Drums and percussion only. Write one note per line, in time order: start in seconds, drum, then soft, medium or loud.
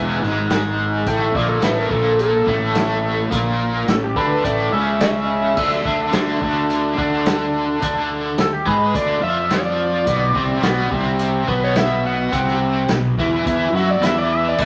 0.23 snare soft
0.50 snare loud
0.50 closed hi-hat medium
1.06 kick loud
1.06 closed hi-hat medium
1.34 kick loud
1.62 snare loud
1.62 closed hi-hat medium
1.91 kick loud
2.19 closed hi-hat medium
2.47 kick loud
2.75 snare loud
2.75 closed hi-hat medium
3.32 kick loud
3.32 closed hi-hat medium
3.88 snare loud
3.88 closed hi-hat medium
4.16 kick loud
4.44 kick loud
4.44 closed hi-hat medium
5.01 snare loud
5.01 closed hi-hat medium
5.57 kick loud
5.57 crash medium
5.71 snare soft
5.85 kick loud
6.13 snare medium
6.13 closed hi-hat medium
6.42 kick loud
6.70 closed hi-hat medium
6.98 kick loud
7.26 snare loud
7.26 closed hi-hat medium
7.82 kick loud
7.82 closed hi-hat medium
8.38 snare loud
8.38 closed hi-hat medium
8.66 kick loud
8.95 kick loud
8.95 closed hi-hat medium
9.51 snare loud
9.51 closed hi-hat medium
10.07 kick loud
10.07 closed hi-hat medium
10.35 kick loud
10.63 snare loud
10.63 closed hi-hat medium
10.91 kick loud
11.19 closed hi-hat medium
11.48 kick loud
11.76 snare loud
11.76 closed hi-hat medium
12.33 kick loud
12.33 closed hi-hat medium
12.47 snare soft
12.89 snare loud
12.89 closed hi-hat medium
13.18 kick loud
13.18 snare soft
13.46 kick loud
13.46 closed hi-hat medium
13.76 snare soft
14.03 snare loud
14.03 closed hi-hat medium
14.58 kick medium
14.58 crash medium